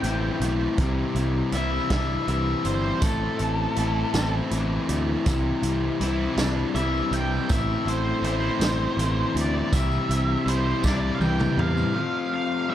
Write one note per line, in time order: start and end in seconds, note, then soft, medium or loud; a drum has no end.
0.00 0.29 A1 medium
0.00 0.41 A2 medium
0.00 0.43 A2 medium
0.00 0.80 E3 medium
0.00 1.89 C4 medium
0.00 1.52 E4 medium
0.00 1.51 G5 medium
0.00 closed hi-hat medium
0.06 0.78 A3 medium
0.06 0.82 C4 medium
0.06 0.82 E4 medium
0.40 0.66 B1 medium
0.40 0.79 A3 medium
0.40 closed hi-hat medium
0.78 1.04 C2 medium
0.78 1.54 C3 medium
0.78 1.53 E3 medium
0.78 1.18 G3 medium
0.78 kick loud
0.78 closed hi-hat medium
0.82 1.17 C4 loud
0.82 1.15 E4 loud
1.15 1.41 C2 loud
1.15 1.56 C4 medium
1.15 1.57 E4 medium
1.15 closed hi-hat medium
1.19 1.54 G3 medium
1.52 1.78 C2 medium
1.52 1.93 E3 medium
1.52 1.92 G3 medium
1.52 1.92 C4 medium
1.52 3.77 E4 medium
1.52 1.90 E5 medium
1.52 closed hi-hat medium
1.57 1.90 E4 medium
1.90 2.16 C2 medium
1.90 2.26 G3 medium
1.90 2.28 C4 medium
1.90 3.02 D4 medium
1.90 2.29 E4 medium
1.90 2.27 E5 medium
1.90 kick medium
1.90 snare loud
1.90 closed hi-hat medium
1.94 2.67 C3 medium
1.94 2.26 E3 medium
2.27 2.53 C2 medium
2.27 3.04 E3 medium
2.27 3.00 G3 medium
2.27 3.05 C4 medium
2.27 3.05 E4 medium
2.27 2.65 E5 medium
2.27 closed hi-hat medium
2.64 2.91 G1 medium
2.64 3.02 G3 medium
2.64 3.02 C5 medium
2.64 closed hi-hat medium
3.02 3.28 A1 loud
3.02 3.78 A2 loud
3.02 3.76 E3 medium
3.02 3.41 A3 loud
3.02 3.40 C4 medium
3.02 4.34 A4 medium
3.02 kick loud
3.02 closed hi-hat loud
3.02 tambourine loud
3.06 3.38 E4 loud
3.39 3.66 A1 loud
3.39 3.76 A3 medium
3.39 3.78 C4 medium
3.39 3.79 E4 medium
3.39 closed hi-hat medium
3.76 4.03 A1 medium
3.76 4.16 E3 medium
3.76 4.14 A3 medium
3.76 4.14 C4 medium
3.76 4.14 E4 medium
3.76 closed hi-hat medium
4.14 4.40 A1 medium
4.14 4.91 A2 medium
4.14 4.51 E3 medium
4.14 4.51 A3 medium
4.14 4.53 C4 medium
4.14 4.53 E4 medium
4.14 snare loud
4.14 closed hi-hat medium
4.14 tambourine loud
4.51 4.77 A1 medium
4.51 5.27 E3 medium
4.51 5.25 A3 medium
4.51 5.29 C4 medium
4.51 5.30 E4 medium
4.51 closed hi-hat medium
4.51 tambourine soft
4.89 5.15 D2 medium
4.89 5.27 A3 medium
4.89 closed hi-hat medium
5.26 5.52 C2 loud
5.26 6.01 C3 medium
5.26 5.99 E3 medium
5.26 5.65 G3 medium
5.26 5.64 C4 loud
5.26 kick loud
5.26 closed hi-hat loud
5.26 tambourine medium
5.30 5.62 E4 loud
5.63 5.89 C2 loud
5.63 6.00 G3 medium
5.63 6.02 C4 medium
5.63 6.03 E4 medium
5.63 closed hi-hat medium
6.00 6.26 C2 medium
6.00 6.40 E3 medium
6.00 6.38 G3 medium
6.00 6.38 C4 medium
6.00 6.38 E4 medium
6.00 closed hi-hat medium
6.37 6.63 C2 medium
6.37 6.75 G3 medium
6.37 6.77 C4 medium
6.37 7.50 D4 medium
6.37 6.77 E4 medium
6.37 snare loud
6.37 closed hi-hat medium
6.37 tambourine medium
6.41 7.14 C3 medium
6.41 6.74 E3 medium
6.75 7.01 C2 medium
6.75 7.50 E3 medium
6.75 7.48 G3 medium
6.75 7.52 C4 medium
6.75 7.52 E4 medium
6.75 7.12 E5 loud
6.75 closed hi-hat medium
6.75 tambourine soft
7.11 7.37 C2 medium
7.11 7.50 G3 medium
7.11 7.50 G5 medium
7.11 closed hi-hat medium
7.49 7.76 A1 loud
7.49 8.24 A2 loud
7.49 8.23 E3 loud
7.49 7.90 A3 medium
7.49 7.89 C4 loud
7.49 7.87 E4 loud
7.49 7.87 E5 medium
7.49 kick loud
7.49 closed hi-hat loud
7.49 tambourine medium
7.86 8.12 A1 loud
7.86 8.26 C4 medium
7.86 8.27 E4 medium
7.86 8.24 C5 medium
7.86 closed hi-hat medium
7.91 8.23 A3 medium
8.22 8.49 A1 medium
8.22 8.64 E3 medium
8.22 8.63 A3 medium
8.22 10.45 E4 medium
8.22 9.33 C5 loud
8.22 closed hi-hat medium
8.27 8.62 C4 medium
8.27 8.62 E4 medium
8.60 8.86 A1 medium
8.60 9.01 A3 medium
8.60 9.02 C4 medium
8.60 9.03 E4 medium
8.60 snare loud
8.60 closed hi-hat medium
8.60 tambourine medium
8.65 9.38 A2 medium
8.65 9.00 E3 medium
8.97 9.23 A1 medium
8.97 9.73 E3 medium
8.97 closed hi-hat medium
8.97 tambourine soft
9.02 9.73 A3 medium
9.02 9.75 C4 medium
9.02 9.76 E4 medium
9.34 9.61 D2 medium
9.34 9.72 A3 medium
9.34 closed hi-hat medium
9.41 9.75 D5 medium
9.73 9.98 C2 loud
9.73 10.47 C3 medium
9.73 10.45 E3 medium
9.73 10.12 G3 loud
9.73 10.11 C4 loud
9.73 11.14 E5 loud
9.73 kick loud
9.73 closed hi-hat loud
9.73 tambourine loud
9.77 10.09 E4 loud
9.92 tambourine soft
10.09 10.35 C2 loud
10.09 10.47 C4 medium
10.09 10.49 E4 medium
10.09 closed hi-hat medium
10.14 10.47 G3 medium
10.46 10.72 C2 medium
10.46 10.86 E3 medium
10.46 10.85 G3 medium
10.46 10.85 C4 medium
10.46 11.95 E4 medium
10.46 10.85 C5 medium
10.46 closed hi-hat medium
10.50 10.83 E4 medium
10.82 11.09 C2 medium
10.82 11.21 G3 medium
10.82 11.22 C4 medium
10.82 11.95 D4 medium
10.82 11.23 E4 medium
10.82 11.13 D5 loud
10.82 kick medium
10.82 snare medium
10.82 tambourine loud
10.87 11.61 C3 medium
10.87 11.20 E3 medium
11.15 11.21 F5 medium
11.20 11.46 C2 medium
11.20 11.93 E3 medium
11.20 11.94 G3 medium
11.20 11.95 C4 medium
11.20 11.56 G5 medium
11.20 high tom medium
11.20 tambourine soft
11.24 11.95 E4 medium
11.39 mid tom medium
11.39 tambourine soft
11.57 11.83 E2 medium
11.57 11.95 G3 medium
11.57 12.32 F5 medium
11.57 mid tom medium
11.77 tambourine soft
11.95 12.68 F3 medium
11.95 12.69 A3 medium
11.95 12.71 C4 loud
11.95 12.72 F4 loud
12.34 12.68 F5 medium
12.69 12.75 F3 medium
12.69 12.75 A3 medium
12.69 12.75 C4 medium
12.69 12.75 E5 loud